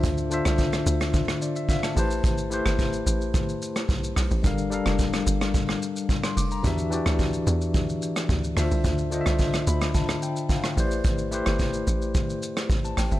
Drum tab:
HH |p-------------o-|p-------------o-|p-------------o-|p-------------o-|
SH |xxxxxxxxxxxxxxxx|xxxxxxxxxxxxxxxx|xxxxxxxxx-xxxxxx|xxxxxxxxxxxxxxxx|
SD |---r-r-r-r---r--|---r-------r--r-|---r-r-r-r---r--|---r-------r--r-|
BD |o---o---o---o---|o---o---o---o---|o---o---o---o---|o---o---o---o---|

HH |p-------------o-|p-------------o-|
SH |xxxxxxxxxxxxxxxx|xxxxxxxxxxxxxxxx|
SD |---r-r-r-r---r--|---r-------r--r-|
BD |o---o---o---o---|o---o---o---o---|